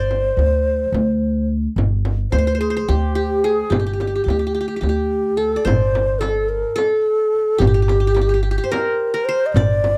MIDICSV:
0, 0, Header, 1, 6, 480
1, 0, Start_track
1, 0, Tempo, 556070
1, 1528, Time_signature, 7, 3, 24, 8
1, 8612, End_track
2, 0, Start_track
2, 0, Title_t, "Ney"
2, 0, Program_c, 0, 77
2, 0, Note_on_c, 0, 72, 83
2, 1280, Note_off_c, 0, 72, 0
2, 1998, Note_on_c, 0, 72, 85
2, 2226, Note_off_c, 0, 72, 0
2, 2243, Note_on_c, 0, 68, 72
2, 2427, Note_off_c, 0, 68, 0
2, 2427, Note_on_c, 0, 68, 55
2, 2497, Note_on_c, 0, 67, 71
2, 2510, Note_off_c, 0, 68, 0
2, 2726, Note_off_c, 0, 67, 0
2, 2731, Note_on_c, 0, 67, 74
2, 2976, Note_on_c, 0, 68, 78
2, 2989, Note_off_c, 0, 67, 0
2, 3211, Note_on_c, 0, 67, 74
2, 3224, Note_off_c, 0, 68, 0
2, 4155, Note_off_c, 0, 67, 0
2, 4160, Note_on_c, 0, 67, 68
2, 4639, Note_on_c, 0, 69, 71
2, 4652, Note_off_c, 0, 67, 0
2, 4886, Note_on_c, 0, 72, 84
2, 4899, Note_off_c, 0, 69, 0
2, 5346, Note_on_c, 0, 69, 78
2, 5359, Note_off_c, 0, 72, 0
2, 5601, Note_on_c, 0, 70, 76
2, 5614, Note_off_c, 0, 69, 0
2, 5857, Note_on_c, 0, 69, 85
2, 5870, Note_off_c, 0, 70, 0
2, 6564, Note_on_c, 0, 67, 94
2, 6577, Note_off_c, 0, 69, 0
2, 7234, Note_off_c, 0, 67, 0
2, 7464, Note_on_c, 0, 72, 62
2, 7523, Note_on_c, 0, 70, 87
2, 7536, Note_off_c, 0, 72, 0
2, 7984, Note_on_c, 0, 72, 95
2, 7997, Note_off_c, 0, 70, 0
2, 8167, Note_on_c, 0, 75, 76
2, 8180, Note_off_c, 0, 72, 0
2, 8226, Note_on_c, 0, 74, 102
2, 8239, Note_off_c, 0, 75, 0
2, 8612, Note_off_c, 0, 74, 0
2, 8612, End_track
3, 0, Start_track
3, 0, Title_t, "Qanun"
3, 0, Program_c, 1, 107
3, 0, Note_on_c, 1, 72, 65
3, 0, Note_on_c, 1, 74, 54
3, 755, Note_off_c, 1, 74, 0
3, 1248, Note_off_c, 1, 72, 0
3, 2005, Note_on_c, 1, 72, 70
3, 2055, Note_off_c, 1, 72, 0
3, 2058, Note_on_c, 1, 72, 51
3, 2130, Note_off_c, 1, 72, 0
3, 2134, Note_on_c, 1, 72, 59
3, 2196, Note_off_c, 1, 72, 0
3, 2199, Note_on_c, 1, 72, 53
3, 2246, Note_off_c, 1, 72, 0
3, 2250, Note_on_c, 1, 72, 64
3, 2329, Note_off_c, 1, 72, 0
3, 2333, Note_on_c, 1, 72, 55
3, 2384, Note_off_c, 1, 72, 0
3, 2388, Note_on_c, 1, 72, 58
3, 2491, Note_on_c, 1, 67, 63
3, 2718, Note_off_c, 1, 67, 0
3, 2721, Note_on_c, 1, 67, 63
3, 2970, Note_on_c, 1, 68, 64
3, 3022, Note_off_c, 1, 67, 0
3, 3193, Note_on_c, 1, 67, 55
3, 3245, Note_off_c, 1, 68, 0
3, 3272, Note_off_c, 1, 67, 0
3, 3276, Note_on_c, 1, 67, 40
3, 3300, Note_off_c, 1, 72, 0
3, 3333, Note_off_c, 1, 67, 0
3, 3336, Note_on_c, 1, 67, 40
3, 3392, Note_off_c, 1, 67, 0
3, 3396, Note_on_c, 1, 67, 35
3, 3455, Note_off_c, 1, 67, 0
3, 3459, Note_on_c, 1, 67, 41
3, 3513, Note_off_c, 1, 67, 0
3, 3516, Note_on_c, 1, 67, 37
3, 3583, Note_off_c, 1, 67, 0
3, 3587, Note_on_c, 1, 67, 38
3, 3655, Note_off_c, 1, 67, 0
3, 3659, Note_on_c, 1, 67, 32
3, 3708, Note_off_c, 1, 67, 0
3, 3712, Note_on_c, 1, 67, 40
3, 3788, Note_off_c, 1, 67, 0
3, 3791, Note_on_c, 1, 67, 34
3, 3852, Note_off_c, 1, 67, 0
3, 3856, Note_on_c, 1, 67, 36
3, 3920, Note_off_c, 1, 67, 0
3, 3923, Note_on_c, 1, 67, 35
3, 3972, Note_off_c, 1, 67, 0
3, 3976, Note_on_c, 1, 67, 42
3, 4035, Note_off_c, 1, 67, 0
3, 4039, Note_on_c, 1, 67, 34
3, 4108, Note_off_c, 1, 67, 0
3, 4111, Note_on_c, 1, 67, 41
3, 4147, Note_off_c, 1, 67, 0
3, 4151, Note_on_c, 1, 67, 39
3, 4217, Note_off_c, 1, 67, 0
3, 4220, Note_on_c, 1, 67, 46
3, 4637, Note_on_c, 1, 69, 54
3, 4801, Note_on_c, 1, 74, 50
3, 4875, Note_on_c, 1, 72, 70
3, 5304, Note_off_c, 1, 67, 0
3, 5354, Note_off_c, 1, 69, 0
3, 5357, Note_on_c, 1, 69, 63
3, 5650, Note_off_c, 1, 74, 0
3, 5786, Note_off_c, 1, 72, 0
3, 5829, Note_off_c, 1, 69, 0
3, 5832, Note_on_c, 1, 69, 72
3, 6547, Note_on_c, 1, 67, 66
3, 6619, Note_off_c, 1, 67, 0
3, 6622, Note_on_c, 1, 67, 45
3, 6680, Note_off_c, 1, 67, 0
3, 6684, Note_on_c, 1, 67, 54
3, 6749, Note_off_c, 1, 67, 0
3, 6752, Note_on_c, 1, 67, 41
3, 6809, Note_off_c, 1, 67, 0
3, 6813, Note_on_c, 1, 67, 51
3, 6854, Note_off_c, 1, 69, 0
3, 6903, Note_off_c, 1, 67, 0
3, 6907, Note_on_c, 1, 67, 43
3, 6965, Note_off_c, 1, 67, 0
3, 6968, Note_on_c, 1, 67, 50
3, 7027, Note_off_c, 1, 67, 0
3, 7030, Note_on_c, 1, 67, 41
3, 7087, Note_off_c, 1, 67, 0
3, 7091, Note_on_c, 1, 67, 44
3, 7153, Note_off_c, 1, 67, 0
3, 7157, Note_on_c, 1, 67, 43
3, 7195, Note_off_c, 1, 67, 0
3, 7198, Note_on_c, 1, 67, 47
3, 7271, Note_off_c, 1, 67, 0
3, 7275, Note_on_c, 1, 67, 43
3, 7343, Note_off_c, 1, 67, 0
3, 7346, Note_on_c, 1, 67, 51
3, 7402, Note_off_c, 1, 67, 0
3, 7405, Note_on_c, 1, 67, 48
3, 7455, Note_on_c, 1, 72, 56
3, 7523, Note_on_c, 1, 70, 77
3, 7885, Note_off_c, 1, 70, 0
3, 7888, Note_on_c, 1, 70, 67
3, 8012, Note_off_c, 1, 72, 0
3, 8016, Note_on_c, 1, 72, 79
3, 8257, Note_on_c, 1, 74, 79
3, 8489, Note_off_c, 1, 67, 0
3, 8612, Note_off_c, 1, 70, 0
3, 8612, Note_off_c, 1, 72, 0
3, 8612, Note_off_c, 1, 74, 0
3, 8612, End_track
4, 0, Start_track
4, 0, Title_t, "Upright bass"
4, 0, Program_c, 2, 32
4, 0, Note_on_c, 2, 31, 76
4, 263, Note_off_c, 2, 31, 0
4, 318, Note_on_c, 2, 38, 77
4, 741, Note_off_c, 2, 38, 0
4, 797, Note_on_c, 2, 38, 80
4, 1429, Note_off_c, 2, 38, 0
4, 1520, Note_on_c, 2, 31, 81
4, 1942, Note_off_c, 2, 31, 0
4, 2005, Note_on_c, 2, 38, 72
4, 2425, Note_off_c, 2, 38, 0
4, 2490, Note_on_c, 2, 38, 80
4, 3116, Note_off_c, 2, 38, 0
4, 3200, Note_on_c, 2, 31, 77
4, 3622, Note_off_c, 2, 31, 0
4, 3680, Note_on_c, 2, 38, 74
4, 4101, Note_off_c, 2, 38, 0
4, 4160, Note_on_c, 2, 38, 78
4, 4791, Note_off_c, 2, 38, 0
4, 4880, Note_on_c, 2, 31, 83
4, 5719, Note_off_c, 2, 31, 0
4, 6560, Note_on_c, 2, 31, 92
4, 7398, Note_off_c, 2, 31, 0
4, 8237, Note_on_c, 2, 31, 89
4, 8612, Note_off_c, 2, 31, 0
4, 8612, End_track
5, 0, Start_track
5, 0, Title_t, "Darbuka"
5, 4897, Note_on_c, 9, 64, 81
5, 4984, Note_off_c, 9, 64, 0
5, 5139, Note_on_c, 9, 63, 66
5, 5225, Note_off_c, 9, 63, 0
5, 5369, Note_on_c, 9, 63, 66
5, 5455, Note_off_c, 9, 63, 0
5, 5853, Note_on_c, 9, 63, 68
5, 5939, Note_off_c, 9, 63, 0
5, 6339, Note_on_c, 9, 62, 24
5, 6426, Note_off_c, 9, 62, 0
5, 6567, Note_on_c, 9, 64, 75
5, 6654, Note_off_c, 9, 64, 0
5, 6804, Note_on_c, 9, 63, 67
5, 6890, Note_off_c, 9, 63, 0
5, 7048, Note_on_c, 9, 63, 68
5, 7134, Note_off_c, 9, 63, 0
5, 7536, Note_on_c, 9, 63, 64
5, 7622, Note_off_c, 9, 63, 0
5, 8014, Note_on_c, 9, 62, 22
5, 8100, Note_off_c, 9, 62, 0
5, 8257, Note_on_c, 9, 64, 84
5, 8343, Note_off_c, 9, 64, 0
5, 8497, Note_on_c, 9, 63, 66
5, 8583, Note_off_c, 9, 63, 0
5, 8612, End_track
6, 0, Start_track
6, 0, Title_t, "Frame drum"
6, 93, Note_on_c, 9, 64, 50
6, 180, Note_off_c, 9, 64, 0
6, 335, Note_on_c, 9, 64, 51
6, 421, Note_off_c, 9, 64, 0
6, 816, Note_on_c, 9, 64, 56
6, 903, Note_off_c, 9, 64, 0
6, 1537, Note_on_c, 9, 64, 72
6, 1623, Note_off_c, 9, 64, 0
6, 1771, Note_on_c, 9, 64, 60
6, 1857, Note_off_c, 9, 64, 0
6, 2005, Note_on_c, 9, 64, 59
6, 2091, Note_off_c, 9, 64, 0
6, 2492, Note_on_c, 9, 64, 54
6, 2578, Note_off_c, 9, 64, 0
6, 3211, Note_on_c, 9, 64, 88
6, 3297, Note_off_c, 9, 64, 0
6, 3454, Note_on_c, 9, 64, 55
6, 3540, Note_off_c, 9, 64, 0
6, 3699, Note_on_c, 9, 64, 59
6, 3785, Note_off_c, 9, 64, 0
6, 4173, Note_on_c, 9, 64, 55
6, 4259, Note_off_c, 9, 64, 0
6, 4896, Note_on_c, 9, 64, 93
6, 4982, Note_off_c, 9, 64, 0
6, 5137, Note_on_c, 9, 64, 58
6, 5223, Note_off_c, 9, 64, 0
6, 5373, Note_on_c, 9, 64, 58
6, 5460, Note_off_c, 9, 64, 0
6, 5852, Note_on_c, 9, 64, 56
6, 5938, Note_off_c, 9, 64, 0
6, 6573, Note_on_c, 9, 64, 83
6, 6659, Note_off_c, 9, 64, 0
6, 6813, Note_on_c, 9, 64, 62
6, 6900, Note_off_c, 9, 64, 0
6, 7051, Note_on_c, 9, 64, 59
6, 7137, Note_off_c, 9, 64, 0
6, 7539, Note_on_c, 9, 64, 60
6, 7626, Note_off_c, 9, 64, 0
6, 8250, Note_on_c, 9, 64, 82
6, 8337, Note_off_c, 9, 64, 0
6, 8494, Note_on_c, 9, 64, 66
6, 8580, Note_off_c, 9, 64, 0
6, 8612, End_track
0, 0, End_of_file